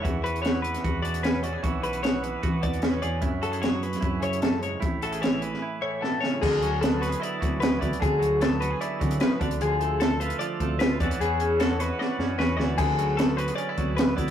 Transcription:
<<
  \new Staff \with { instrumentName = "Clean electric guitar" } { \time 4/4 \key d \lydian \tempo 4 = 151 r8 b'8 cis''8 b'4 d''8 b'8 d''8 | r8 b'8 cis''8 b'4 d''8 b'8 d''8 | r8 a'8 cis''8 b'4 cis''8 a'8 cis''8 | r8 a'8 cis''8 b'4 cis''8 a'8 cis''8 |
gis'4 a'8 b'8 d''4 b'8 d''8 | gis'4 a'8 b'8 d''4 b'8 d''8 | gis'4 a'8 b'8 d''4 b'8 d''8 | gis'4 a'8 b'8 d''4 b'8 d''8 |
gis'4 a'8 b'8 d''4 b'8 d''8 | }
  \new Staff \with { instrumentName = "Clean electric guitar" } { \time 4/4 \key d \lydian << { fis'8 fis'4. fis'4 cis'8 fis'16 gis'16 | fis'8 fis'4. fis'4 cis'8 gis'8 | e'8 fis'16 gis'4~ gis'16 e'2 | e'8 fis'16 gis'4~ gis'16 e'2 |
r4 b8 fis'16 gis'16 e'4 b8 e'8 | r4 b8 fis'16 gis'16 e'4 b8 r8 | r8 a8 a'8 f'4 a8 f'8 <b cis' fis'>8~ | <b cis' fis'>8 cis'8 fis'8 fis'4 cis'8 fis'4~ |
fis'4 b8 fis'16 gis'16 cis'16 e'8. b8 e'8 | } \\ { e4 b4. b,4. | e4 b4. b,4. | fis,4 fis4. cis8 fis,8 gis,8 | a,4 e4. a,8 b,8 cis8 |
d8 fis2 fis4. | d8 fis2 fis4 d8 | f2 f4. e8 | b2 b4. e8 |
d8 fis2 fis4. | } >> }
  \new Staff \with { instrumentName = "Picked electric bass" } { \clef bass \time 4/4 \key d \lydian e,2 e,2 | b,,2 e8 e,4 e,8 | fis,2 fis,2 | a,,2 r2 |
d,2 r8 d,4 d,16 r16 | d,2 r8 d8 r8 d,8 | d,2 r8 d,4 e,16 r16 | e,2 r8 fis,8 e,8 d,8 |
d,2 r8 d,4 d,16 r16 | }
  \new DrumStaff \with { instrumentName = "Drums" } \drummode { \time 4/4 <hh bd>8 hh16 hh16 <hh sn>8 hh16 <hh sn>16 <hh bd>8 hh16 hh16 <hh sn>8 hh8 | <hh bd>8 hh16 hh16 <hh sn>8 hh8 <hh bd>8 <hh bd>16 hh16 <hh sn>8 hh8 | <hh bd>8 hh16 hh16 <hh sn>8 hh16 <hh sn>16 <hh bd>8 hh16 hh16 <hh sn>8 hh8 | <hh bd>8 hh16 hh16 <hh sn>8 hh16 sn16 r4 sn8 sn8 |
<cymc bd>8 hh8 <hh sn>8 <hh sn>16 hh16 hh8 <hh bd>8 <hh sn>8 <hh bd>16 hh16 | <hh bd>8 hh8 <hh sn>8 hh8 hh8 <hh bd>16 hh16 <hh sn>8 <hh bd>16 hh16 | hh8 hh8 <hh sn>8 hh16 hh16 hh8 <hh bd>8 <hh sn>8 <hh bd>16 hh16 | hh8 hh8 <hh sn>8 <hh sn>8 sn8 sn8 sn8 sn8 |
<cymc hh bd>8 hh8 <hh sn>8 hh16 hh16 hh8 <hh bd>8 <hh sn>8 <hh bd>8 | }
>>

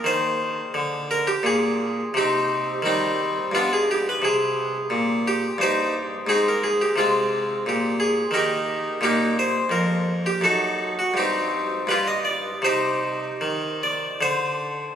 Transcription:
<<
  \new Staff \with { instrumentName = "Harpsichord" } { \time 3/4 \key c \minor \tempo 4 = 86 c''4. bes'16 g'16 aes'4 | <c' ees' g'>4 <g c' ees'>4 <b d' f'>16 aes'16 g'16 b'16 | aes'4. g'8 <ees' g' c''>8 r8 | <c' ees' aes'>16 bes'16 aes'16 g'16 <aes c' f'>4 g'8 aes'8 |
<ees' g' bes'>4 <bes ees' g'>8 c''8 bes'8. g'16 | <dis' fis' a'>8. fis'16 <c' ees' g'>4 <f' g' b'>16 ees''16 d''8 | <ees' g' c''>4. d''8 c''4 | }
  \new Staff \with { instrumentName = "Harpsichord" } { \clef bass \time 3/4 \key c \minor ees4 d4 bes,4 | c4 ees4 g,4 | c4 bes,4 g,4 | aes,4 c4 bes,4 |
ees4 bes,4 f,4 | fis,4 g,4 g,4 | c4 ees4 d4 | }
>>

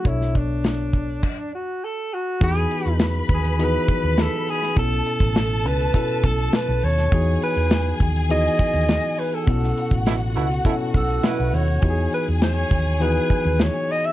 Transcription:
<<
  \new Staff \with { instrumentName = "String section" } { \time 4/4 \key e \major \tempo 4 = 102 r1 | <b' b''>1 | <a' a''>1 | <gis' gis''>1 |
<fis' fis''>1 | <gis' gis''>1 | }
  \new Staff \with { instrumentName = "Alto saxophone" } { \time 4/4 \key e \major e'8 d'2 fis'8 a'8 fis'8 | gis'4 r8 gis'8 b'4 a'8 gis'8 | a'4 a'8 b'4 a'8 b'8 cis''8~ | cis''8 b'4 r8 dis''4. b'16 a'16~ |
a'8. r4. r16 a'8 b'8 cis''8~ | cis''8 b'8 cis''4 b'4 cis''8 dis''16 e''16 | }
  \new Staff \with { instrumentName = "Tine electric piano" } { \time 4/4 \key e \major <b, b d' a' cis''>4. r2 r8 | <e b dis' fis' gis'>4. r8 <e b dis' fis' gis'>4. r8 | <b, b cis' e' a'>4. r8 <b, b cis' e' a'>4. r8 | <e b dis' fis' gis'>4. r8 <e b dis' fis' gis'>4. r8 |
<b, b cis' e' a'>4. r8 <b, b cis' e' a'>4. r8 | <e b dis' fis' g' gis'>4. r8 <e b dis' fis' gis'>4. r8 | }
  \new Staff \with { instrumentName = "Trombone section" } { \time 4/4 \key e \major r1 | r1 | r1 | r1 |
r4 <b, a e'>16 r16 <b, a e'>16 r16 <b, a e'>16 r8. <b, a e'>8. r16 | r1 | }
  \new Staff \with { instrumentName = "Fingered electric bass" } { \clef bass \time 4/4 \key e \major b,,2 r2 | e,8 r16 e,8. dis,4 r16 dis,8 r8. | b,,8 r16 a,,8. cis,8 r8 b,,8 r16 b,,16 dis,8 | e,8 r16 e,8. dis,4 r16 dis,8 r8. |
b,,8 r16 a,,8. cis,8 r8 b,,8 r16 b,,16 dis,8 | e,8 r16 e,8. dis,4 r16 dis,8 r8. | }
  \new DrumStaff \with { instrumentName = "Drums" } \drummode { \time 4/4 <hh bd>16 sn16 <hh bd>8 <hh sn>8 <hh bd>8 <cymc bd>4 r4 | <hh bd>16 hh16 hh16 hh16 <hh sn>16 hh16 <hh bd>16 hh16 hh8 <hh bd>16 hh16 <hh sn>8 hho16 <hh sn>16 | <hh bd>16 hh16 hh16 <hh bd>16 <hh sn>8 hh16 hh16 <hh bd>16 hh16 <hh bd>16 hh16 <hh sn>8 hho16 <hh sn>16 | <hh bd>16 hh16 hh16 hh16 <hh sn>16 hh16 <hh bd>16 hh16 hh16 hh16 <hh bd>16 hh16 <hh sn>16 hh16 hho16 hh16 |
<hh bd>16 sn16 hh16 <hh bd>16 <hh sn>8 hh16 hh16 <hh bd>16 hh16 <hh bd>16 hh16 <hh sn>8 hho16 hh16 | <hh bd>8 hh16 hh16 <hh sn>16 hh16 <hh bd>16 hh16 hh8 <hh bd>16 hh16 <hh sn>8 hho16 hh16 | }
>>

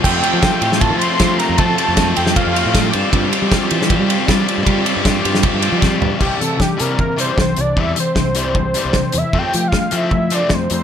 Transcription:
<<
  \new Staff \with { instrumentName = "Analog synth lead" } { \time 4/4 \key c \major \tempo 4 = 155 g''2 a''8 c'''4 bes''8 | a''8 a''4 g''8 f''4. r8 | r1 | r1 |
g'8 a'8 g'8 bes'8 bes'8 c''8 c''8 d''8 | e''8 c''2. e''8 | g''8. f''8. e''4 d''8 c''8 c''8 | }
  \new Staff \with { instrumentName = "Clean electric guitar" } { \time 4/4 \key c \major <f a c' g'>8 <a c' g'>8 <f a c' g'>8 <f a c' g'>8 <f a c' g'>8 <a c' g'>8 <f a c' g'>8 <a c' g'>8 | <f a c' g'>8 <a c' g'>8 <f a c' g'>8 <f a c' g'>8 <f a c' g'>8 <a c' g'>8 <f a c' g'>8 <g c' f' g'>8 | <g c' f' g'>8 <c' f' g'>8 <g c' f' g'>8 <g c' f' g'>8 <g c' f' g'>8 <c' f' g'>8 <g c' f' g'>8 <c' f' g'>8 | <g c' f' g'>8 <c' f' g'>8 <g c' f' g'>8 <g c' f' g'>8 <g c' f' g'>8 <c' f' g'>8 <g c' f' g'>8 <c' f' g'>8 |
r1 | r1 | r1 | }
  \new Staff \with { instrumentName = "Overdriven electric guitar" } { \time 4/4 \key c \major <f a c' f'>8 <a c' f'>8 <f a c' f'>8 <a c' f'>4 <a c' f'>8 <f a c' f'>4 | <f a c' f'>8 <a c' f'>8 <f a c' f'>8 <a c' f'>4 <a c' f'>8 <f a c' f'>8 <g c' f' g'>8 | <g c' f' g'>8 <c' f' g'>8 <g c' f' g'>8 <c' f' g'>4 <c' f' g'>8 <g c' f' g'>4 | <g c' f' g'>8 <c' f' g'>8 <g c' f' g'>8 <c' f' g'>4 <c' f' g'>8 <g c' f' g'>4 |
<c e g>8 <c e>8 <c e>8 <c e g>8 <c e>8 <c e g>8 <c e>8 <c e>8 | <c e g>8 <c e>8 <c e>8 <c e g>8 <c e>8 <c e g>8 <c e>8 <c e>8 | <f a c'>8 <f a>8 <f a>8 <f a c'>8 <f a>8 <f a c'>8 <f a>8 <f a>8 | }
  \new Staff \with { instrumentName = "Fingered electric bass" } { \clef bass \time 4/4 \key c \major f,8 r16 f8 r16 a,8. f8 r16 f8 r16 f,16 | f8 r16 f,8. f,8 r16 f,8 a,8. g,16 r16 | g,8 r16 g8 r16 e8. g8 r16 g8 r16 g,16 | g8 r16 g,8. g,8 r16 g,8 f8. g,16 r16 |
c,16 r16 c8 r8 c4. c,8 c,8 | e,8 r8 c,4.~ c,16 c,8 r16 e,16 r16 | f,16 r16 f8 r8 f4. f,8 f,8 | }
  \new DrumStaff \with { instrumentName = "Drums" } \drummode { \time 4/4 <cymc bd>8 cymr8 <bd cymr sn>8 cymr16 sn16 <bd cymr>8 cymr8 <bd cymr sn>8 <cymr sn>8 | <bd cymr>8 cymr8 <bd cymr sn>8 cymr16 sn16 <bd cymr>8 cymr8 <bd cymr sn>8 cymr8 | <bd cymr>8 cymr8 <bd cymr sn>8 cymr16 sn16 <bd cymr>8 cymr8 <bd cymr sn>8 cymr8 | <bd cymr>8 cymr8 <bd cymr sn>8 cymr16 sn16 <bd cymr>8 cymr8 <bd sn>8 tomfh8 |
<cymc bd>8 hh8 <bd sn>8 hh8 bd8 hh8 <bd sn>8 hh8 | bd8 hh8 <bd sn>8 hh8 bd8 hh8 <bd sn>8 hh8 | bd8 hh8 <bd sn>8 hh8 bd8 hh8 <bd sn>8 hh8 | }
>>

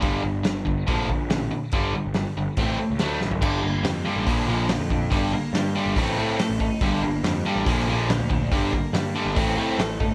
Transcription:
<<
  \new Staff \with { instrumentName = "Clean electric guitar" } { \time 4/4 \key g \minor \tempo 4 = 142 r1 | r1 | g,8 bes8 g8 d'8 bes,8 bes8 f8 d'8 | g,8 bes8 g8 d'8 a,8 c'8 a8 ees'8 |
g,8 bes8 g8 d'8 bes,8 bes8 f8 d'8 | g,8 bes8 g8 d'8 a,8 c'8 a8 ees'8 | }
  \new Staff \with { instrumentName = "Overdriven electric guitar" } { \clef bass \time 4/4 \key g \minor <g, d g>8 <g, d>8 <g, d>8 <g, d>8 <bes, d f>8 <bes, d>8 <bes, d>8 <bes, d>8 | <g, d g>8 <g, d>8 <g, d>8 <g, d>8 <a, a c'>8 <a, a>8 <d fis a>8 <d fis>8 | <g, d g>8 <g, d>8 <g, d>8 <g, d g>8 <bes, d f>8 <bes, d f>8 <bes, d>8 <bes, d>8 | <g, d g>8 <g, d>8 <g, d>8 <g, d g>8 <a, a c'>8 <a, a c'>8 <a, a>8 <a, a>8 |
<g, d g>8 <g, d>8 <g, d>8 <g, d g>8 <bes, d f>8 <bes, d f>8 <bes, d>8 <bes, d>8 | <g, d g>8 <g, d>8 <g, d>8 <g, d g>8 <a, a c'>8 <a, a c'>8 <a, a>8 <a, a>8 | }
  \new Staff \with { instrumentName = "Picked electric bass" } { \clef bass \time 4/4 \key g \minor g,,2 bes,,8 bes,,8 a,,8 r8 | g,,8 r16 g,,8 r16 g,,16 r16 a,,8 r16 cis,16 d,8 a,,8 | g,,4 f,8 r16 a,,16 bes,,8 bes,,8. f,8. | g,,8 r8 g,8 r16 g,,16 a,,8 a,8 r16 a,,8 r16 |
g,,4 f,8 r16 a,,16 bes,,8 bes,,8. d,8. | g,,8 r8 g,8 r16 g,,16 a,,8 a,8 a,,8 g,,8 | }
  \new DrumStaff \with { instrumentName = "Drums" } \drummode { \time 4/4 <hho bd>4 <hho sn>8 bd8 <hho bd>8 bd8 <hho sn>4 | <hho bd>4 <hho sn>4 <hho bd>4 <hho sn>8 sn16 tomfh16 | <cymc bd>4 <hho sn>4 <hho bd>4 <hho sn>8 bd8 | <hho bd>4 <hho sn>4 <hho bd>4 <hho sn>8 bd8 |
<hho bd>4 <hho sn>4 <hho bd>4 <hho sn>8 bd8 | <hho bd>8 bd8 <hho sn>4 <hho bd>4 <hho sn>8 bd8 | }
>>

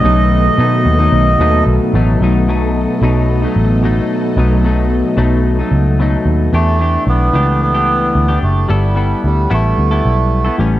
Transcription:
<<
  \new Staff \with { instrumentName = "String machine" } { \time 4/4 \key b \minor \tempo 4 = 111 <dis b a'>1 | <b a' dis''>1~ | <b a' dis''>1 | r1 |
r1 | }
  \new Staff \with { instrumentName = "Clean electric guitar" } { \time 4/4 \key b \minor <b, fis a dis'>4 <b, fis a dis'>8. <fis a dis'>8. <b, fis a dis'>4 <b, fis a dis'>8 | <b, fis a dis'>8 <b, fis a dis'>4 <b, fis a dis'>8. <fis a dis'>8. <b, fis a dis'>4 | <b, fis a dis'>8 <b, fis a dis'>4 <b, fis a dis'>8. <fis a dis'>8. <b, fis a dis'>4 | <e a d' g'>8 <e a d' g'>4 <e a d' g'>8. <e a d' g'>4 <a d' g'>8. |
<g b e' a'>8 <g b e' a'>4 <g b e' a'>8. <g b e' a'>4 <b e' a'>16 <a, g b cis'>8 | }
  \new Staff \with { instrumentName = "Melodica" } { \time 4/4 \key b \minor dis''2. r4 | r1 | r1 | a4 b4 b4. a8 |
g4 g8 a2 r8 | }
  \new Staff \with { instrumentName = "Picked electric bass" } { \clef bass \time 4/4 \key b \minor b,,4 b,8 dis,8 b,,8 dis,8 b,,16 r16 a,,8 | b,,4~ b,,16 r16 b,,4 a,,4 r8 | b,,4~ b,,16 r16 b,,4 cis,4 dis,8 | e,4 b,,8 cis,4. d,8 fis,,8 |
g,,4 d,8 a,,8 d,8 b,,4 a,,8 | }
>>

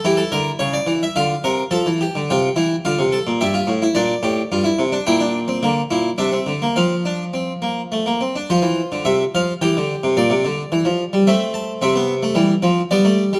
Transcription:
<<
  \new Staff \with { instrumentName = "Harpsichord" } { \time 3/4 \key d \minor \tempo 4 = 107 << { g'16 a'16 bes'8 cis''16 d''8 e''16 f''4 | a''4 g''4 f''4 | e''4 d''2 | \key f \major g''2 e''4 |
f''2~ f''8 r8 | c''4 e''8 f''8 g''4 | d''2 e''8 a''8 | e''2 d''4 | } \\ { e'2 f'8 bes'8 | a'8 g'8 f'8 e'8 f'8 a'8 | g'16 f'8 e'16 d'8 g'8 f'16 e'8 d'16 | e'16 d'8 c'16 bes8 e'8 d'16 c'8 bes16 |
c'8 d'8 c'8 bes8 a16 bes16 c'16 d'16 | f'2 g'4~ | g'2 c'4 | c'16 b8 a16 g8 c'8 b16 a8 g16 | } >> }
  \new Staff \with { instrumentName = "Harpsichord" } { \clef bass \time 3/4 \key d \minor e8 d8 cis8 e8 d8 c8 | f16 e8 d16 c8 e8 d16 c8 bes,16 | g,8 a,8 bes,8 a,8 g,8 c8 | \key f \major bes,4 d8 bes,8 c8 d8 |
f2~ f8 r8 | f16 e8 d16 c8 f8 e16 d8 c16 | bes,16 c16 d8 e16 f8 g16 a4 | c4 e8 f8 g4 | }
>>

